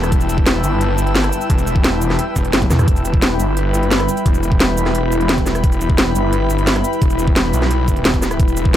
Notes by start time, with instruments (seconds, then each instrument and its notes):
Already playing: detuned saw bass E1, ambient pad G3 E4 B4 A5, analog synth pad E4 B4 G5 E6
0.03 cross-stick, closed hi-hat, cabasa
0.12 detuned saw bass E1, kick, closed hi-hat
0.21 closed hi-hat, cabasa
0.29 closed hi-hat, cabasa
0.38 kick
0.46 snare, closed hi-hat
0.64 detuned saw bass G1, closed hi-hat, cabasa
0.81 closed hi-hat
0.98 detuned saw bass G1, closed hi-hat, cabasa
1.07 closed hi-hat
1.15 snare, closed hi-hat
1.24 cross-stick, closed hi-hat
1.33 closed hi-hat, cabasa
1.41 closed hi-hat, cabasa
1.50 detuned saw bass E1, kick, closed hi-hat
1.58 closed hi-hat, cabasa
1.67 closed hi-hat, cabasa
1.76 kick
1.84 snare, closed hi-hat
2.02 detuned saw bass E1, closed hi-hat, cabasa
2.10 cross-stick, snare
2.19 closed hi-hat
2.36 detuned saw bass E1, kick, closed hi-hat, cabasa
2.45 closed hi-hat
2.53 detuned saw bass F#1, snare, closed hi-hat
2.62 kick, closed hi-hat, high tom
2.70 detuned saw bass E2, cross-stick, snare, closed hi-hat, mid tom, cabasa
2.79 cross-stick, closed hi-hat, mid tom, cabasa
2.88 detuned saw bass E1, ambient pad E5, kick, closed hi-hat
2.96 closed hi-hat, cabasa
3.05 closed hi-hat, cabasa
3.10 analog synth pad B5, kick
3.22 snare, closed hi-hat
3.39 detuned saw bass G1, closed hi-hat, cabasa
3.57 closed hi-hat
3.74 detuned saw bass G1, closed hi-hat, cabasa
3.83 closed hi-hat
3.91 snare, closed hi-hat
4.00 cross-stick, closed hi-hat
4.09 closed hi-hat, cabasa
4.17 closed hi-hat, cabasa
4.26 detuned saw bass E1, kick, closed hi-hat
4.34 closed hi-hat, cabasa
4.43 closed hi-hat, cabasa
4.52 kick
4.60 snare, closed hi-hat
4.77 detuned saw bass E1, closed hi-hat, cabasa
4.86 cross-stick, snare
4.95 closed hi-hat
5.12 closed hi-hat, cabasa
5.21 closed hi-hat
5.29 snare, closed hi-hat
5.38 kick, closed hi-hat
5.46 cross-stick, snare, closed hi-hat, cabasa
5.55 cross-stick, closed hi-hat, cabasa
5.64 detuned saw bass E1, kick, closed hi-hat
5.72 closed hi-hat, cabasa
5.81 closed hi-hat, cabasa
5.90 kick
5.98 snare, closed hi-hat
6.15 detuned saw bass G1, closed hi-hat, cabasa
6.33 closed hi-hat
6.50 detuned saw bass G1, closed hi-hat, cabasa
6.58 closed hi-hat
6.67 snare, closed hi-hat
6.76 cross-stick, closed hi-hat
6.84 closed hi-hat, cabasa
6.93 closed hi-hat, cabasa
7.02 detuned saw bass E1, kick, closed hi-hat
7.10 closed hi-hat, cabasa
7.19 closed hi-hat, cabasa
7.28 kick
7.36 snare, closed hi-hat
7.53 detuned saw bass B1, closed hi-hat, cabasa
7.62 cross-stick, snare
7.71 closed hi-hat
7.88 kick, closed hi-hat, cabasa
7.96 closed hi-hat
8.05 detuned saw bass E1, snare, closed hi-hat
8.14 kick, closed hi-hat
8.22 cross-stick, snare, closed hi-hat, cabasa
8.31 cross-stick, closed hi-hat, cabasa
8.40 detuned saw bass E1, ambient pad G5, kick, closed hi-hat
8.48 closed hi-hat, cabasa
8.57 closed hi-hat, cabasa
8.62 analog synth pad D#6, kick